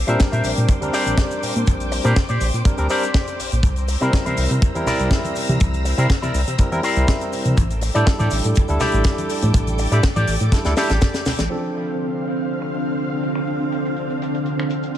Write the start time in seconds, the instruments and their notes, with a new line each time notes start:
Already playing: string machine C5 G5 D6
0.07 analog synth bass A#2, tine electric piano G3 C4 D4 A#4, clean electric guitar G4 C5 E5, closed hi-hat, shaker
0.19 kick, snare, closed hi-hat, shaker
0.32 analog synth bass A#2, clean electric guitar G4 C5 E5, closed hi-hat, shaker
0.44 analog synth bass A#1, open hi-hat, shaker
0.57 analog synth bass A#2, closed hi-hat, shaker
0.69 muted clean electric guitar stroke, kick, closed hi-hat, shaker
0.81 analog synth bass D2, tine electric piano G3 C4 D4 A#4, closed hi-hat, shaker
0.93 clean electric guitar G4 C5 D5, snare, open hi-hat, shaker
1.06 analog synth bass A#1, closed hi-hat, shaker
1.18 kick, snare, closed hi-hat, shaker
1.31 closed hi-hat, shaker
1.43 analog synth bass A#2, open hi-hat, shaker
1.55 analog synth bass A#2, closed hi-hat, shaker
1.67 analog synth bass A#1, kick, closed hi-hat, shaker
1.80 closed hi-hat, shaker
1.91 muted clean electric guitar stroke, open hi-hat, shaker
2.04 analog synth bass A#2, tine electric piano G3 C4 D4 A#4, clean electric guitar G4 C5 D5, closed hi-hat, shaker
2.16 kick, snare, closed hi-hat, shaker
2.28 analog synth bass A#2, clean electric guitar G4 C5 D5, closed hi-hat, shaker
2.41 analog synth bass A#1, open hi-hat, shaker
2.54 analog synth bass A#2, closed hi-hat, shaker
2.65 tine electric piano G3 C4 D4 A#4, muted clean electric guitar stroke, kick, closed hi-hat, shaker
2.78 analog synth bass D2, tine electric piano G3 C4 D4 A#4, closed hi-hat, shaker
2.89 tine electric piano G3 C4 D4 A#4, clean electric guitar G4 C5 D5, open hi-hat, shaker
3.03 closed hi-hat, shaker
3.14 kick, snare, closed hi-hat, shaker
3.27 closed hi-hat, shaker
3.39 analog synth bass A#1, open hi-hat, shaker
3.52 analog synth bass A#1, closed hi-hat, shaker
3.63 analog synth bass C2, string machine A#5 E6, kick, closed hi-hat, shaker
3.76 closed hi-hat, shaker
3.88 muted clean electric guitar stroke, open hi-hat, shaker
4.00 analog synth bass C3, tine electric piano G3 C4 E4 A#4, clean electric guitar E4 A#4 C5, closed hi-hat, shaker
4.13 kick, snare, closed hi-hat, shaker
4.26 analog synth bass C3, clean electric guitar E4 A#4 C5, closed hi-hat, muted conga, high conga, shaker
4.37 analog synth bass C2, open hi-hat, shaker
4.50 analog synth bass C3, closed hi-hat, muted conga, shaker
4.62 analog synth bass E2, muted clean electric guitar stroke, kick, closed hi-hat, shaker
4.74 analog synth bass E2, tine electric piano G3 C4 E4 A#4, closed hi-hat, shaker
4.86 clean electric guitar E4 A#4 D5, snare, open hi-hat, low conga, shaker
4.99 analog synth bass C2, closed hi-hat, shaker
5.11 kick, snare, closed hi-hat, shaker
5.25 closed hi-hat, muted conga, shaker
5.36 analog synth bass C3, open hi-hat, shaker
5.49 analog synth bass C3, closed hi-hat, high conga, shaker
5.60 analog synth bass C2, kick, closed hi-hat, shaker
5.74 closed hi-hat, shaker
5.85 muted clean electric guitar stroke, open hi-hat, shaker
5.98 analog synth bass C3, tine electric piano G3 C4 E4 A#4, clean electric guitar E4 A#4 C5, closed hi-hat, shaker
6.10 kick, snare, closed hi-hat, shaker
6.22 analog synth bass C3, clean electric guitar E4 A#4 D5, closed hi-hat, muted conga, high conga, shaker
6.34 analog synth bass C2, open hi-hat, shaker
6.47 analog synth bass C3, closed hi-hat, muted conga, shaker
6.58 tine electric piano G3 C4 E4 A#4, muted clean electric guitar stroke, kick, closed hi-hat, shaker
6.71 analog synth bass E2, tine electric piano G3 C4 E4 A#4, closed hi-hat, shaker
6.82 tine electric piano G3 C4 E4 A#4, clean electric guitar E4 A#4 C5, open hi-hat, shaker
6.96 analog synth bass C2, closed hi-hat, shaker
7.08 kick, snare, closed hi-hat, shaker
7.21 closed hi-hat, shaker
7.33 analog synth bass C3, open hi-hat, shaker
7.45 analog synth bass C3, closed hi-hat, high conga, shaker
7.57 analog synth bass A1, string machine A4 G5 D6, kick, closed hi-hat, shaker
7.70 closed hi-hat, shaker
7.81 muted clean electric guitar stroke, open hi-hat, shaker
7.94 analog synth bass A2, tine electric piano G3 D4 E4 A4, clean electric guitar G4 A4 D5, closed hi-hat, shaker
8.06 kick, snare, closed hi-hat, shaker
8.19 analog synth bass A2, clean electric guitar G4 A4 D5, closed hi-hat, muted conga, high conga, shaker
8.31 analog synth bass A1, open hi-hat, shaker
8.44 analog synth bass A2, closed hi-hat, muted conga, shaker
8.55 muted clean electric guitar stroke, kick, closed hi-hat, shaker
8.68 analog synth bass D2, tine electric piano G3 D4 E4 A4, closed hi-hat, shaker
8.80 clean electric guitar G4 A4 D5, snare, open hi-hat, low conga, shaker
8.92 analog synth bass A1, closed hi-hat, shaker
9.04 kick, snare, closed hi-hat, shaker
9.18 closed hi-hat, muted conga, shaker
9.29 analog synth bass A2, open hi-hat, shaker
9.42 analog synth bass A2, closed hi-hat, high conga, shaker
9.54 analog synth bass A1, kick, closed hi-hat, shaker
9.67 closed hi-hat, high conga, shaker
9.79 muted clean electric guitar stroke, open hi-hat, shaker
9.92 analog synth bass A2, tine electric piano G3 D4 E4 A4, clean electric guitar G4 A4 D5, closed hi-hat, shaker
10.03 kick, snare, closed hi-hat, shaker
10.16 analog synth bass A2, clean electric guitar G4 A4 D5, closed hi-hat, muted conga, high conga, shaker
10.27 analog synth bass A1, open hi-hat, shaker
10.40 analog synth bass A2, closed hi-hat, muted conga, shaker
10.52 tine electric piano G3 D4 E4 A4, muted clean electric guitar stroke, kick, snare, closed hi-hat, shaker
10.64 analog synth bass D2, tine electric piano G3 D4 E4 A4, snare, closed hi-hat, shaker
10.76 tine electric piano G3 D4 E4 A4, clean electric guitar G4 A4 D5, snare, open hi-hat, shaker
10.89 analog synth bass A1, snare, closed hi-hat, shaker
11.01 kick, snare, closed hi-hat, shaker
11.14 snare, closed hi-hat, shaker
11.26 analog synth bass A1, snare, open hi-hat, low conga, shaker
11.39 analog synth bass A1, snare, closed hi-hat, high conga, shaker
11.50 string machine D3 C4 F5, tine electric piano F3 C4 D4 A4
11.63 closed hi-hat, shaker
11.75 closed hi-hat
11.88 closed hi-hat
12.00 closed hi-hat
12.13 closed hi-hat
12.24 closed hi-hat, shaker
12.37 closed hi-hat
12.49 closed hi-hat
12.62 finger snap, closed hi-hat
12.74 closed hi-hat, shaker
12.87 closed hi-hat, shaker
12.98 closed hi-hat, shaker
13.11 closed hi-hat, shaker
13.22 closed hi-hat, shaker
13.35 finger snap, closed hi-hat, shaker
13.47 closed hi-hat, shaker
13.60 closed hi-hat, shaker
13.72 closed hi-hat, shaker
13.85 closed hi-hat, shaker
13.96 closed hi-hat, shaker
14.10 closed hi-hat, shaker
14.22 closed hi-hat, shaker
14.34 closed hi-hat, shaker
14.45 closed hi-hat, shaker
14.59 finger snap, closed hi-hat, shaker
14.70 closed hi-hat, shaker
14.83 closed hi-hat, shaker
14.95 closed hi-hat